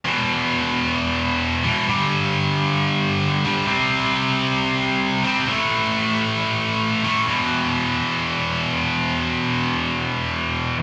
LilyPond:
\new Staff \with { instrumentName = "Distorted electric guitar" } { \clef bass \time 4/4 \key e \minor \tempo 4 = 133 <e, b, e>2.~ <e, b, e>8 <e, b, e>8 | <g, d g>2.~ <g, d g>8 <g, d g>8 | <c g c'>2.~ <c g c'>8 <c g c'>8 | <a, e a>2.~ <a, e a>8 <a, e a>8 |
<e, b, e>1~ | <e, b, e>1 | }